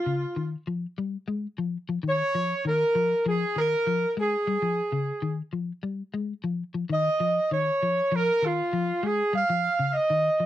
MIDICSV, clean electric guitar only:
0, 0, Header, 1, 2, 480
1, 0, Start_track
1, 0, Tempo, 609137
1, 1601, Time_signature, 4, 2, 24, 8
1, 8241, End_track
2, 0, Start_track
2, 0, Title_t, "Clean electric guitar"
2, 0, Program_c, 0, 27
2, 49, Note_on_c, 0, 49, 63
2, 192, Note_off_c, 0, 49, 0
2, 286, Note_on_c, 0, 51, 64
2, 430, Note_off_c, 0, 51, 0
2, 530, Note_on_c, 0, 53, 70
2, 673, Note_off_c, 0, 53, 0
2, 772, Note_on_c, 0, 55, 71
2, 915, Note_off_c, 0, 55, 0
2, 1005, Note_on_c, 0, 56, 69
2, 1150, Note_off_c, 0, 56, 0
2, 1247, Note_on_c, 0, 53, 65
2, 1391, Note_off_c, 0, 53, 0
2, 1488, Note_on_c, 0, 53, 78
2, 1557, Note_off_c, 0, 53, 0
2, 1600, Note_on_c, 0, 51, 81
2, 1745, Note_off_c, 0, 51, 0
2, 1849, Note_on_c, 0, 53, 70
2, 1991, Note_off_c, 0, 53, 0
2, 2087, Note_on_c, 0, 51, 76
2, 2230, Note_off_c, 0, 51, 0
2, 2325, Note_on_c, 0, 53, 69
2, 2468, Note_off_c, 0, 53, 0
2, 2566, Note_on_c, 0, 53, 96
2, 2709, Note_off_c, 0, 53, 0
2, 2804, Note_on_c, 0, 51, 65
2, 2948, Note_off_c, 0, 51, 0
2, 3047, Note_on_c, 0, 53, 82
2, 3190, Note_off_c, 0, 53, 0
2, 3285, Note_on_c, 0, 56, 75
2, 3428, Note_off_c, 0, 56, 0
2, 3524, Note_on_c, 0, 55, 78
2, 3597, Note_off_c, 0, 55, 0
2, 3642, Note_on_c, 0, 53, 60
2, 3787, Note_off_c, 0, 53, 0
2, 3878, Note_on_c, 0, 49, 63
2, 4024, Note_off_c, 0, 49, 0
2, 4114, Note_on_c, 0, 51, 69
2, 4261, Note_off_c, 0, 51, 0
2, 4355, Note_on_c, 0, 53, 62
2, 4502, Note_off_c, 0, 53, 0
2, 4594, Note_on_c, 0, 55, 66
2, 4741, Note_off_c, 0, 55, 0
2, 4835, Note_on_c, 0, 56, 67
2, 4982, Note_off_c, 0, 56, 0
2, 5072, Note_on_c, 0, 53, 70
2, 5220, Note_off_c, 0, 53, 0
2, 5314, Note_on_c, 0, 53, 72
2, 5387, Note_off_c, 0, 53, 0
2, 5433, Note_on_c, 0, 51, 88
2, 5580, Note_off_c, 0, 51, 0
2, 5674, Note_on_c, 0, 53, 75
2, 5820, Note_off_c, 0, 53, 0
2, 5920, Note_on_c, 0, 51, 72
2, 6065, Note_off_c, 0, 51, 0
2, 6166, Note_on_c, 0, 53, 64
2, 6309, Note_off_c, 0, 53, 0
2, 6396, Note_on_c, 0, 53, 93
2, 6542, Note_off_c, 0, 53, 0
2, 6637, Note_on_c, 0, 51, 72
2, 6783, Note_off_c, 0, 51, 0
2, 6879, Note_on_c, 0, 53, 86
2, 7024, Note_off_c, 0, 53, 0
2, 7115, Note_on_c, 0, 56, 75
2, 7262, Note_off_c, 0, 56, 0
2, 7353, Note_on_c, 0, 55, 82
2, 7429, Note_off_c, 0, 55, 0
2, 7482, Note_on_c, 0, 53, 70
2, 7627, Note_off_c, 0, 53, 0
2, 7716, Note_on_c, 0, 49, 61
2, 7863, Note_off_c, 0, 49, 0
2, 7958, Note_on_c, 0, 51, 65
2, 8105, Note_off_c, 0, 51, 0
2, 8194, Note_on_c, 0, 53, 62
2, 8241, Note_off_c, 0, 53, 0
2, 8241, End_track
0, 0, End_of_file